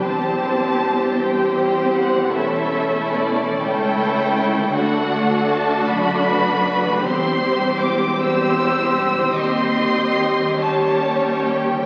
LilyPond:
<<
  \new Staff \with { instrumentName = "Violin section" } { \time 6/8 \key c \lydian \tempo 4. = 51 a''4. g''4 fis''8 | e''4 d''8 g''4. | fis''4 a''8 b''4. | c'''4 d'''8 e'''4. |
c'''4. a''4 g''8 | }
  \new Staff \with { instrumentName = "Violin section" } { \time 6/8 \key c \lydian << { c''4. c''4. | a'4. a'4. | a'2 b'4 | c''4. c''4. |
ees''4. des''4. | } \\ { g'4. g'4. | e'4. e'4. | fis'2. | g'4. g'4. |
g'4. g'4. | } >> }
  \new Staff \with { instrumentName = "Harp" } { \time 6/8 \key c \lydian <e c' g'>2. | <e a cis' a'>2. | <d a d' a'>2. | <e g c' c''>2. |
<ees g ees' c''>4. <ees g des' des''>4. | }
  \new Staff \with { instrumentName = "Viola section" } { \time 6/8 \key c \lydian <g c'>4. <g c'>4. | <a cis'>4. <a cis'>4. | <a d'>2. | <g c'>4. <g c'>4. |
<g c'>4. <g des'>4. | }
  \new Staff \with { instrumentName = "Cello section" } { \clef bass \time 6/8 \key c \lydian e,2. | e,4. cis,4. | d,4. fis,4. | e,2. |
ees,4. ees,4. | }
  \new Staff \with { instrumentName = "Double bass section" } { \clef bass \time 6/8 \key c \lydian e,,2. | e,,4. cis,4. | d,4. fis,,4. | e,,2. |
ees,4. ees,4. | }
>>